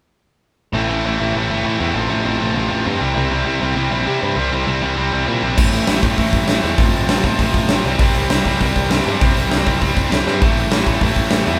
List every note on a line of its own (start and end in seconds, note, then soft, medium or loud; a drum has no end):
0.73 0.86 A1 medium
0.73 0.90 A2 medium
0.73 0.89 E3 medium
0.73 0.89 A3 medium
0.73 0.89 C4 medium
0.73 0.87 E4 medium
0.89 1.01 A1 medium
0.89 1.03 A2 medium
0.89 1.04 E3 medium
0.89 1.04 A3 medium
0.89 1.05 C4 medium
0.89 1.05 E4 medium
1.04 1.17 A1 medium
1.04 1.20 A2 medium
1.04 1.20 E3 medium
1.04 1.19 A3 medium
1.04 1.20 C4 medium
1.04 1.19 E4 medium
1.20 1.32 A1 medium
1.20 1.34 A2 medium
1.20 1.34 E3 medium
1.20 1.35 A3 medium
1.20 1.36 C4 medium
1.20 1.36 E4 medium
1.35 1.47 A1 medium
1.35 1.51 A2 medium
1.35 1.51 E3 medium
1.35 1.50 A3 medium
1.35 1.50 C4 medium
1.35 1.49 E4 medium
1.50 1.62 G1 medium
1.50 1.64 A2 medium
1.50 1.65 E3 medium
1.50 1.65 A3 medium
1.50 1.66 C4 medium
1.50 1.66 E4 medium
1.64 1.77 A2 medium
1.64 1.80 A2 medium
1.64 1.80 E3 medium
1.64 1.79 A3 medium
1.64 1.80 C4 medium
1.64 1.78 E4 medium
1.79 1.93 E2 medium
1.79 1.93 A2 medium
1.79 1.94 E3 medium
1.79 1.94 A3 medium
1.79 1.95 C4 medium
1.79 1.94 E4 medium
1.94 2.07 A1 medium
1.94 2.10 F2 medium
1.94 2.09 A2 medium
1.94 2.09 C3 medium
1.94 2.09 F3 medium
1.94 2.09 A3 medium
1.94 2.08 C4 medium
1.94 2.07 F4 medium
2.08 2.22 A1 medium
2.08 2.24 F2 medium
2.08 2.22 A2 medium
2.08 2.24 C3 medium
2.08 2.23 F3 medium
2.08 2.23 A3 medium
2.08 2.25 C4 medium
2.08 2.24 F4 medium
2.23 2.38 A1 medium
2.23 2.41 F2 medium
2.23 2.40 A2 medium
2.23 2.39 C3 medium
2.23 2.40 F3 medium
2.23 2.39 A3 medium
2.23 2.40 C4 medium
2.23 2.38 F4 medium
2.39 2.54 A1 medium
2.39 2.53 F2 medium
2.39 2.53 A2 medium
2.39 2.54 C3 medium
2.39 2.54 F3 medium
2.39 2.54 A3 medium
2.39 2.56 C4 medium
2.39 2.55 F4 medium
2.54 2.68 A1 medium
2.54 2.70 F2 medium
2.54 2.69 A2 medium
2.54 2.69 C3 loud
2.54 2.69 F3 medium
2.54 2.68 A3 medium
2.54 2.69 C4 medium
2.54 2.67 F4 medium
2.68 2.84 A1 medium
2.68 2.84 F2 medium
2.68 2.83 A2 medium
2.68 2.85 C3 medium
2.68 2.84 F3 medium
2.68 2.84 A3 medium
2.68 2.86 C4 medium
2.68 2.85 F4 medium
2.85 3.00 F2 medium
2.85 2.99 G2 medium
2.85 2.99 A2 medium
2.85 2.99 C3 medium
2.85 2.99 F3 medium
2.85 3.00 A3 medium
2.85 3.01 C4 medium
2.85 3.00 F4 medium
3.00 3.14 C2 medium
3.00 3.15 C3 loud
3.00 3.14 E3 medium
3.00 3.14 G3 loud
3.00 3.14 C4 loud
3.00 3.13 E4 loud
3.14 3.29 C2 medium
3.14 3.29 C3 medium
3.14 3.30 E3 medium
3.14 3.30 G3 medium
3.14 3.31 C4 medium
3.14 3.31 E4 loud
3.29 3.43 C2 medium
3.29 3.47 C3 medium
3.29 3.46 E3 medium
3.29 3.46 G3 medium
3.29 3.46 C4 medium
3.29 3.45 E4 medium
3.46 3.58 C2 medium
3.46 3.60 C3 medium
3.46 3.61 E3 medium
3.46 3.60 G3 medium
3.46 3.62 C4 medium
3.46 3.62 E4 medium
3.61 3.74 C2 medium
3.61 3.77 C3 medium
3.61 3.77 E3 medium
3.61 3.75 G3 medium
3.61 3.76 C4 medium
3.61 3.75 E4 medium
3.76 3.89 C2 medium
3.76 3.91 C3 medium
3.76 3.92 E3 medium
3.76 3.91 G3 medium
3.76 3.93 C4 loud
3.76 3.93 E4 loud
3.91 4.04 A#1 medium
3.91 4.07 C3 medium
3.91 4.07 E3 medium
3.91 4.06 G3 medium
3.91 4.06 C4 medium
3.91 4.06 E4 medium
4.06 4.20 C3 medium
4.06 4.21 E3 medium
4.06 4.21 G3 medium
4.06 4.22 C4 medium
4.06 4.22 E4 medium
4.21 4.35 G2 medium
4.21 4.36 C3 medium
4.21 4.36 E3 medium
4.21 4.35 G3 medium
4.21 4.35 C4 medium
4.21 4.34 E4 medium
4.35 4.49 C2 loud
4.35 4.49 C3 medium
4.35 4.50 E3 medium
4.35 4.51 G3 medium
4.35 4.51 C4 medium
4.35 4.52 E4 medium
4.51 4.64 C2 medium
4.51 4.66 C3 medium
4.51 4.66 E3 medium
4.51 4.66 G3 medium
4.51 4.65 C4 medium
4.51 4.65 E4 medium
4.66 4.80 C2 medium
4.66 4.79 C3 medium
4.66 4.80 E3 medium
4.66 4.81 G3 medium
4.66 4.81 C4 medium
4.66 4.81 E4 medium
4.81 4.95 C2 medium
4.81 4.97 C3 medium
4.81 4.97 E3 medium
4.81 4.96 G3 medium
4.81 4.96 C4 medium
4.81 4.96 E4 medium
4.97 5.10 C2 medium
4.97 5.11 C3 medium
4.97 5.11 E3 medium
4.97 5.12 G3 medium
4.97 5.13 C4 medium
4.97 5.13 E4 medium
5.12 5.25 C2 medium
5.12 5.27 C3 medium
5.12 5.27 E3 medium
5.12 5.27 G3 medium
5.12 5.26 C4 medium
5.12 5.26 E4 medium
5.27 5.41 A#2 medium
5.27 5.41 C3 medium
5.27 5.42 E3 medium
5.27 5.41 G3 medium
5.27 5.42 C4 medium
5.27 5.43 E4 medium
5.42 5.56 A#1 medium
5.42 5.56 C3 medium
5.42 5.56 E3 medium
5.42 5.57 G3 medium
5.42 5.57 C4 medium
5.42 5.57 E4 medium
5.57 5.67 A1 medium
5.57 5.86 A2 medium
5.57 5.86 E3 medium
5.57 5.87 A3 medium
5.57 5.88 C4 medium
5.57 5.88 E4 medium
5.57 kick loud
5.57 crash loud
5.73 5.83 A1 medium
5.73 open hi-hat medium
5.87 5.98 A1 medium
5.87 6.02 A2 medium
5.87 6.01 E3 medium
5.87 6.01 A3 medium
5.87 6.02 C4 medium
5.87 6.00 E4 medium
5.87 snare loud
5.87 open hi-hat medium
6.02 6.13 A1 medium
6.02 6.15 A2 medium
6.02 6.16 E3 medium
6.02 6.16 A3 medium
6.02 6.17 C4 medium
6.02 6.17 E4 medium
6.02 kick loud
6.02 open hi-hat medium
6.16 6.28 A1 loud
6.16 6.46 A2 medium
6.16 6.46 E3 medium
6.16 6.47 A3 loud
6.16 6.48 C4 loud
6.16 6.47 E4 medium
6.16 kick medium
6.16 open hi-hat medium
6.33 6.43 A1 medium
6.33 kick medium
6.33 open hi-hat medium
6.47 6.58 A1 medium
6.47 6.62 A2 medium
6.47 6.62 E3 medium
6.47 6.62 A3 medium
6.47 6.62 C4 medium
6.47 6.61 E4 medium
6.47 snare loud
6.47 open hi-hat medium
6.62 6.74 E2 medium
6.62 6.76 A2 medium
6.62 6.77 E3 medium
6.62 6.77 A3 medium
6.62 6.79 C4 medium
6.62 6.77 E4 medium
6.62 open hi-hat medium
6.77 6.88 A1 loud
6.77 7.08 F2 medium
6.77 7.07 A2 medium
6.77 7.09 C3 loud
6.77 7.08 F3 medium
6.77 7.08 A3 medium
6.77 7.09 C4 loud
6.77 7.09 F4 loud
6.77 kick loud
6.77 open hi-hat medium
6.93 7.03 A1 medium
6.93 open hi-hat medium
7.08 7.18 A1 medium
7.08 7.25 F2 medium
7.08 7.24 A2 medium
7.08 7.24 C3 medium
7.08 7.24 F3 medium
7.08 7.24 A3 medium
7.08 7.24 C4 medium
7.08 7.22 F4 loud
7.08 snare loud
7.08 open hi-hat medium
7.23 7.33 A1 medium
7.23 7.38 F2 medium
7.23 7.38 A2 medium
7.23 7.39 C3 medium
7.23 7.38 F3 medium
7.23 7.39 A3 medium
7.23 7.40 C4 medium
7.23 7.40 F4 medium
7.23 kick medium
7.23 open hi-hat medium
7.39 7.49 A1 medium
7.39 7.69 F2 medium
7.39 7.68 A2 medium
7.39 7.70 C3 medium
7.39 7.69 F3 medium
7.39 7.69 A3 medium
7.39 7.71 C4 loud
7.39 7.70 F4 loud
7.39 kick medium
7.39 open hi-hat medium
7.54 7.64 A1 medium
7.54 kick medium
7.54 open hi-hat medium
7.69 7.79 A1 medium
7.69 7.84 F2 medium
7.69 7.84 A2 medium
7.69 7.83 C3 medium
7.69 7.84 F3 medium
7.69 7.84 A3 medium
7.69 7.86 C4 medium
7.69 7.85 F4 loud
7.69 snare loud
7.69 open hi-hat medium
7.84 7.94 C2 medium
7.84 8.00 C3 medium
7.84 8.00 E3 loud
7.84 8.00 G3 medium
7.84 8.00 C4 loud
7.84 7.99 E4 loud
7.84 open hi-hat medium
7.99 8.09 C2 loud
7.99 8.31 C3 medium
7.99 8.31 E3 medium
7.99 8.30 G3 medium
7.99 8.30 C4 medium
7.99 8.29 E4 loud
7.99 kick loud
7.99 open hi-hat medium
8.15 8.25 C2 medium
8.15 open hi-hat medium
8.29 8.40 C2 medium
8.29 8.43 C3 medium
8.29 8.44 E3 medium
8.29 8.44 G3 medium
8.29 8.46 C4 medium
8.29 8.46 E4 loud
8.29 snare loud
8.29 open hi-hat medium
8.44 8.55 C2 medium
8.44 8.61 C3 medium
8.44 8.61 E3 medium
8.44 8.60 G3 medium
8.44 8.60 C4 medium
8.44 8.60 E4 medium
8.44 kick medium
8.44 open hi-hat medium
8.60 8.70 C2 medium
8.60 8.91 C3 medium
8.60 8.91 E3 loud
8.60 8.90 G3 medium
8.60 8.91 C4 medium
8.60 8.90 E4 medium
8.60 kick medium
8.60 open hi-hat medium
8.76 8.86 C2 medium
8.76 kick medium
8.76 open hi-hat medium
8.90 9.00 C2 medium
8.90 9.04 C3 medium
8.90 9.06 E3 medium
8.90 9.05 G3 medium
8.90 9.06 C4 medium
8.90 9.07 E4 medium
8.90 snare loud
8.90 open hi-hat medium
9.05 9.16 G2 medium
9.05 9.21 C3 medium
9.05 9.22 E3 medium
9.05 9.20 G3 medium
9.05 9.20 C4 medium
9.05 9.20 E4 medium
9.05 open hi-hat medium
9.21 9.31 C2 loud
9.21 9.51 C3 medium
9.21 9.52 E3 medium
9.21 9.50 G3 medium
9.21 9.50 C4 medium
9.21 9.50 E4 medium
9.21 kick loud
9.21 open hi-hat medium
9.37 9.46 C2 medium
9.37 open hi-hat medium
9.50 9.61 C2 medium
9.50 9.65 C3 medium
9.50 9.65 E3 medium
9.50 9.66 G3 medium
9.50 9.67 C4 medium
9.50 9.67 E4 medium
9.50 snare loud
9.50 open hi-hat medium
9.66 9.76 C2 medium
9.66 9.81 C3 medium
9.66 9.81 E3 medium
9.66 9.81 G3 medium
9.66 9.81 C4 medium
9.66 9.80 E4 medium
9.66 kick medium
9.66 open hi-hat medium
9.81 9.91 C2 loud
9.81 10.11 C3 medium
9.81 10.11 E3 medium
9.81 10.11 G3 medium
9.81 10.11 C4 medium
9.81 10.09 E4 medium
9.81 kick medium
9.81 open hi-hat medium
9.96 10.06 C2 medium
9.96 kick loud
9.96 open hi-hat medium
10.10 10.22 C2 medium
10.10 10.25 C3 medium
10.10 10.25 E3 medium
10.10 10.26 G3 medium
10.10 10.27 C4 medium
10.10 10.27 E4 medium
10.10 snare loud
10.10 open hi-hat medium
10.26 10.44 G2 medium
10.26 10.41 C3 medium
10.26 10.40 E3 medium
10.26 10.41 G3 medium
10.26 10.43 C4 medium
10.26 10.41 E4 medium
10.26 snare medium
10.42 10.52 A1 medium
10.42 10.70 A2 medium
10.42 10.70 E3 medium
10.42 10.71 A3 loud
10.42 10.71 C4 medium
10.42 10.71 E4 loud
10.42 kick loud
10.42 open hi-hat medium
10.57 10.67 A1 medium
10.57 open hi-hat medium
10.71 10.82 A1 medium
10.71 10.86 A2 medium
10.71 10.86 E3 medium
10.71 10.86 A3 medium
10.71 10.85 C4 medium
10.71 10.84 E4 medium
10.71 snare loud
10.71 open hi-hat medium
10.86 10.97 A1 medium
10.86 11.00 A2 medium
10.86 11.01 E3 medium
10.86 11.01 A3 medium
10.86 11.02 C4 medium
10.86 11.02 E4 medium
10.86 kick medium
10.86 open hi-hat medium
11.01 11.11 A1 medium
11.01 11.30 A2 medium
11.01 11.31 E3 medium
11.01 11.31 A3 medium
11.01 11.31 C4 medium
11.01 11.32 E4 loud
11.01 kick medium
11.01 open hi-hat medium
11.16 11.26 A1 medium
11.16 kick medium
11.16 open hi-hat medium
11.31 11.41 A1 medium
11.31 11.47 A2 medium
11.31 11.46 E3 medium
11.31 11.46 A3 medium
11.31 11.46 C4 medium
11.31 11.45 E4 loud
11.31 snare loud
11.31 open hi-hat medium
11.46 11.57 E2 medium
11.46 11.59 A2 medium
11.46 11.59 E3 medium
11.46 11.59 A3 medium
11.46 11.59 C4 medium
11.46 11.59 E4 medium
11.46 open hi-hat medium